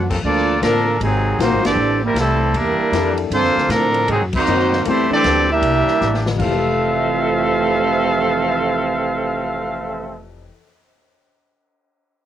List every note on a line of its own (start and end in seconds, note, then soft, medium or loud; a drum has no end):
0.00 0.22 F#2 loud
0.10 0.19 G2 medium
0.10 0.20 F3 medium
0.10 0.20 A#3 medium
0.10 0.19 C4 loud
0.10 0.20 A4 loud
0.10 kick medium
0.10 crash medium
0.23 0.61 D2 loud
0.23 0.59 F3 medium
0.23 0.60 A#3 medium
0.23 0.60 D4 medium
0.23 0.60 F4 medium
0.23 0.60 A4 medium
0.23 0.60 D5 loud
0.61 0.99 A1 medium
0.61 0.97 D3 medium
0.61 0.97 F3 medium
0.61 0.97 A#3 medium
0.61 0.84 A#3 medium
0.61 0.84 C4 medium
0.61 0.98 D4 medium
0.61 0.85 D4 medium
0.61 0.85 F4 medium
0.61 0.85 A4 medium
0.61 0.99 A4 medium
0.61 0.98 A#4 medium
0.61 snare medium
0.61 hi-hat pedal medium
0.61 ride medium
1.00 1.38 G#1 loud
1.00 1.36 C3 medium
1.00 1.36 D#3 medium
1.00 1.38 F#3 medium
1.00 1.36 G#3 medium
1.00 1.38 C4 medium
1.00 1.38 D#4 medium
1.00 1.38 G#4 medium
1.00 ride medium
1.39 1.51 A#1 loud
1.39 1.64 D#3 medium
1.39 1.64 F#3 medium
1.39 1.61 A#3 medium
1.39 1.64 A#3 medium
1.39 1.61 C4 medium
1.39 1.64 C4 medium
1.39 1.61 D#4 medium
1.39 1.64 D#4 medium
1.39 1.62 F4 medium
1.39 1.62 F#4 medium
1.39 1.64 F#4 medium
1.39 1.64 C5 medium
1.39 snare medium
1.39 hi-hat pedal medium
1.39 ride medium
1.51 1.63 G#1 medium
1.64 1.75 F#1 medium
1.64 2.00 E3 medium
1.64 2.00 G3 medium
1.64 2.01 C4 medium
1.64 2.00 D4 medium
1.64 2.00 G4 medium
1.64 2.00 A4 medium
1.64 2.00 D5 medium
1.64 snare loud
1.64 ride medium
1.76 2.14 A1 medium
2.03 2.17 G3 medium
2.03 2.17 A#3 medium
2.03 2.17 C4 medium
2.03 2.17 E4 medium
2.03 2.17 A#4 medium
2.14 2.52 C2 loud
2.14 2.53 C3 medium
2.14 2.53 E3 medium
2.14 2.53 A4 medium
2.14 snare medium
2.14 hi-hat pedal medium
2.14 ride medium
2.18 2.53 G3 medium
2.18 2.53 A3 medium
2.18 2.53 C4 medium
2.18 2.53 E4 medium
2.54 2.77 E2 medium
2.54 3.18 E3 medium
2.54 3.18 G3 medium
2.54 3.19 G3 medium
2.54 3.19 A#3 medium
2.54 3.18 D4 medium
2.54 3.18 E4 medium
2.54 3.18 A#4 medium
2.54 ride medium
2.79 muted upright bass stroke soft
2.92 3.30 F2 medium
2.92 3.32 A#3 medium
2.92 3.32 D4 medium
2.92 3.32 E4 medium
2.92 3.32 G4 medium
2.92 3.32 A4 medium
2.92 snare medium
2.92 hi-hat pedal medium
2.92 ride medium
3.18 ride medium
3.30 3.43 G2 medium
3.30 3.68 D3 loud
3.30 3.68 F3 medium
3.30 3.68 A#3 medium
3.30 3.68 C4 loud
3.30 3.69 F4 loud
3.30 3.69 A4 medium
3.30 3.69 C5 loud
3.30 ride medium
3.43 3.55 F2 medium
3.43 snare soft
3.56 3.68 D2 medium
3.56 snare soft
3.69 4.07 A2 loud
3.69 4.09 D3 medium
3.69 4.09 F3 medium
3.69 4.09 C4 medium
3.69 4.09 D4 medium
3.69 4.09 A4 medium
3.69 4.09 A#4 loud
3.69 snare medium
3.69 hi-hat pedal medium
3.69 ride medium
3.94 ride medium
4.08 4.20 G#2 loud
4.08 4.20 C3 medium
4.08 4.20 D#3 medium
4.08 4.21 F#3 medium
4.08 4.20 G#3 medium
4.08 4.21 C4 medium
4.08 4.21 D#4 medium
4.08 4.21 G#4 medium
4.08 ride medium
4.20 4.33 F#2 medium
4.33 4.46 D#2 medium
4.33 4.83 D#3 medium
4.33 4.84 F#3 medium
4.33 4.83 A#3 medium
4.33 4.83 C4 medium
4.33 4.83 D#4 loud
4.33 4.83 F#4 medium
4.33 4.83 C5 loud
4.33 kick loud
4.33 crash medium
4.46 4.84 F#2 medium
4.46 4.85 A#3 medium
4.46 4.86 C4 medium
4.46 4.86 D#4 medium
4.46 4.86 F#4 medium
4.46 4.86 F5 medium
4.46 hi-hat pedal medium
4.59 snare soft
4.72 snare medium
4.85 5.08 E2 loud
4.85 5.09 E3 medium
4.85 5.09 G3 loud
4.85 5.44 A3 medium
4.85 5.10 A3 medium
4.85 5.44 C4 medium
4.85 5.10 C4 medium
4.85 5.44 E4 medium
4.85 5.10 E4 medium
4.85 5.44 G4 medium
4.85 5.10 G4 medium
4.85 5.44 A4 medium
4.85 5.10 C5 loud
4.85 ride medium
5.10 5.46 E3 medium
5.10 5.46 G3 loud
5.10 5.47 C4 medium
5.10 5.46 D4 loud
5.10 5.48 G4 loud
5.10 5.48 A4 medium
5.10 5.48 D5 loud
5.10 muted upright bass stroke soft
5.24 5.61 D2 loud
5.24 snare medium
5.24 hi-hat pedal medium
5.24 ride medium
5.51 6.27 G3 loud
5.51 6.27 A#3 medium
5.51 6.27 D4 medium
5.51 6.27 E4 loud
5.51 6.27 G4 medium
5.51 6.27 A#4 medium
5.51 6.27 E5 loud
5.62 5.85 C2 loud
5.62 ride medium
5.88 snare soft
6.01 6.38 A1 loud
6.01 snare medium
6.01 hi-hat pedal medium
6.14 snare medium
6.26 10.39 F2 medium
6.26 snare loud
6.34 10.45 C3 medium
6.39 10.47 F1 loud
6.39 10.23 F2 loud
6.39 10.23 C3 loud
6.39 10.51 E3 medium
6.39 10.23 E3 medium
6.39 10.23 A3 loud
6.39 10.23 C4 medium
6.39 10.23 A4 medium
6.39 10.23 E5 medium
6.39 10.23 F5 loud
6.39 kick medium
6.39 crash medium
6.46 10.58 G4 medium
6.52 10.64 A4 medium
6.64 cymbal swell soft